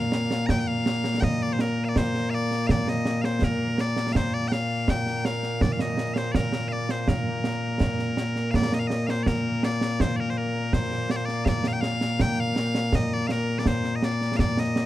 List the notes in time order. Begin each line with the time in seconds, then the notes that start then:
Already playing: A#2 A#3 F5
0.12 snare
0.31 snare
0.46 G5 A#5, concert bass drum, snare
0.59 G5
0.68 F5
0.86 snare
1.04 snare
1.20 D#5 G5, concert bass drum, snare
1.42 D5
1.53 C5
1.59 A#4, snare
1.85 F5
1.89 D5
1.96 C5, concert bass drum, snare
2.14 snare
2.30 F5
2.35 D5
2.51 snare
2.67 D5 F5, concert bass drum, snare
2.88 D#5, snare
3.06 snare
3.22 C5 F5, snare
3.42 A#4, concert bass drum, snare
3.78 D5, snare
3.97 snare
4.13 C5 F5, concert bass drum, snare
4.34 D5
4.48 G5, snare
4.52 F5
4.88 G5, concert bass drum, snare
5.06 snare
5.25 F5, snare
5.43 snare
5.61 D5, concert bass drum, snare
5.72 F5
5.79 D#5, snare
5.98 snare
6.14 C5 F5, snare
6.32 A#4 D5, concert bass drum, snare
6.53 snare
6.69 F5
6.73 D5
6.89 C5, snare
7.01 C5
7.08 A#4, concert bass drum, snare
7.44 snare
7.80 concert bass drum, snare
7.99 snare
8.17 snare
8.36 snare
8.51 F5, concert bass drum, snare
8.56 D5
8.72 D#5, snare
8.79 F5
8.87 D#5, snare
9.07 C5 F5, snare
9.23 D5, concert bass drum, snare
9.28 A#4
9.63 D5, snare
9.81 snare
10.00 C5, concert bass drum, snare
10.16 A#4 D5
10.30 C5
10.38 A#4
10.73 C5, concert bass drum, snare
10.92 snare
11.10 D5, snare
11.16 C5
11.25 D5, snare
11.45 D5 F5, concert bass drum, snare
11.64 F5, snare
11.73 G5
11.81 F5, snare
12.01 snare
12.20 G5, concert bass drum, snare
12.40 F5
12.56 snare
12.75 snare
12.93 D#5, concert bass drum, snare
13.13 D5
13.27 F5, snare
13.31 A#4
13.59 D5
13.66 C5, concert bass drum, snare
13.84 snare
13.96 D#5
14.03 D5, snare
14.21 snare
14.37 D5 F5, concert bass drum, snare
14.57 D#5, snare
14.76 snare